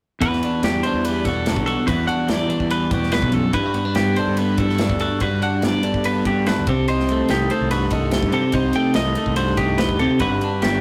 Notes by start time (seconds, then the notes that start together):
0.21 E2 F#4 B4, kick, ride
0.33 snare
0.43 D4, ride
0.63 E2 G3 G4, snare, ride
0.83 E3 D4 C5, ride
0.94 E2
1.05 G3 B4, ride
1.25 E2 B2 F#4 A4, kick, snare, ride
1.46 D4, snare, ride
1.56 B1, kick
1.66 F#4 A4, ride
1.86 E2 F#4 B4, kick, ride
2.07 D4 F#5, ride
2.28 E2 G3 D5, snare, ride
2.49 E3 D4, ride
2.60 E2, kick
2.70 G3 B4, ride
2.91 E2 B2 F#4 G4, kick, ride
3.03 snare
3.12 E2 B4, snare, ride
3.22 B1, kick
3.32 F#2 A4, ride
3.53 G2 E4 B4, kick, ride
3.66 F#4
3.74 B3, ride
3.85 D4
3.95 G2 B3 G4, snare, ride
4.16 D3 D4 C5, ride
4.28 G2
4.37 B3 B4, ride
4.58 G2 E4 A4, kick, ride
4.70 F#4, snare
4.78 D4, snare, ride
4.90 D2, kick
4.99 F#4 A4, ride
5.20 G2 F#4 B4, kick, ride
5.42 D4 F#5, ride
5.62 G2 B3 D5, snare, ride
5.83 D3 D4, ride
5.94 G2, kick
6.04 B3 B4, ride
6.25 G2 F#4 G4, kick, ride
6.46 D4 B4, snare, ride
6.57 D2
6.67 C2 C3 G4 A4, kick, ride
6.88 D#4 C5, ride
7.00 snare
7.09 A3, ride
7.29 C2 D#3 D#4 G4, snare, ride
7.50 A3 C5, ride
7.61 C2
7.71 G2 F#4 B4, ride
7.91 C2 D#4 A4, kick, ride
8.11 G4, snare, ride
8.23 G2, kick
8.32 C3 G4 A4, ride
8.52 C2 D#4 C5, kick, ride
8.73 A3 G5, ride
8.94 C2 D#3 D#4 D#5, snare, ride
9.15 A3, ride
9.26 C2, kick
9.36 G2 F#4 C5, ride
9.57 C2 D#4 G4, kick, ride
9.78 G4 B4, snare, ride
9.89 D2, kick
9.99 C3 G4 A4, ride
10.19 G1 G2 F#4 B4, kick, ride
10.41 D4, ride
10.62 G1 B3 G4, snare, ride